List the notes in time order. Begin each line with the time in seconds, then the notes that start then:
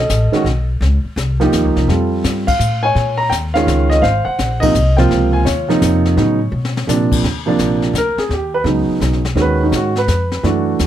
Already playing: D#5
0.00 A4
0.09 A1, snare, hi-hat pedal
0.32 D#3 G#3 C#4 F#4, muted upright bass stroke, snare
0.44 B1, snare
0.81 C#2, brush sweep, snare
1.04 muted upright bass stroke
1.16 C2, snare, hi-hat pedal
1.40 F3 A#3 D#4 G4, snare
1.52 D#2, snare, hi-hat pedal
1.64 C#2
1.76 C2, snare
1.88 F2 G3 C4 F4 A4, brush sweep, snare
2.24 G2, snare, hi-hat pedal
2.47 F5, kick, ride
2.59 A2, hi-hat pedal
2.83 C#5 G#5
2.95 A#2, brush sweep, snare
3.18 A#5
3.30 D#2 G5, snare, hi-hat pedal
3.54 D#3 G#3 C#4 F4 F5, snare
3.67 C#2, snare, hi-hat pedal
3.90 D#5, snare
4.02 G#1 C5 F5, brush sweep, snare
4.25 F#5, muted upright bass stroke
4.39 A#1, snare, hi-hat pedal
4.60 C3 F3 A#3 D#4 D#5, kick, ride
4.75 C2, hi-hat pedal
4.97 C3 F3 A#3 F4 C5 G5, snare
5.11 C#2, brush sweep, snare
5.33 G#5
5.45 D#2 F4 C#5, snare, hi-hat pedal
5.68 C3 F3 A#3 D#4, snare
5.82 F2, snare, hi-hat pedal
6.06 snare
6.16 A2 C#3 F#3 B3 D#4, brush sweep, snare
6.52 B2
6.65 snare
6.77 snare
6.87 A#2 C3 F3 A#3 D4, snare, hi-hat pedal
7.12 kick, crash
7.23 D#2, brush sweep, snare
7.46 C3 F3 A#3 D4
7.59 A#1, snare, hi-hat pedal
7.82 snare
7.93 D2, snare, hi-hat pedal
7.98 A#4
8.17 G#4, muted upright bass stroke, snare
8.29 D#2 G4, brush sweep, snare
8.54 B4
8.64 C#2 C#3 F#3 B3 D#4, snare
8.88 muted upright bass stroke
9.00 B1, snare, hi-hat pedal
9.13 snare
9.25 snare
9.35 D#2 D#3 G#3 C#4 F#4, brush sweep, snare
9.42 B4
9.63 D#4
9.72 G#2, snare, hi-hat pedal
9.76 F#4
9.96 B4, snare
10.08 F2, snare, hi-hat pedal
10.32 snare
10.43 F#2 E3 A3 D4 F#4, brush sweep, snare
10.79 E2, snare, hi-hat pedal